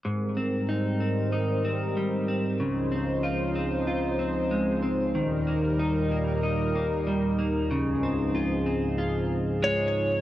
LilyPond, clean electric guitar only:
\new Staff \with { instrumentName = "Clean electric guitar" } { \time 4/4 \key aes \major \tempo 4 = 94 aes,8 c'8 ees'8 c'8 ees'8 c'8 g8 c'8 | des8 c'8 f'8 c'8 f'8 c'8 aes8 c'8 | ees8 bes8 ees'8 bes8 ees'8 bes8 g8 bes8 | des8 c'8 f'8 c'8 f'4 aes4 | }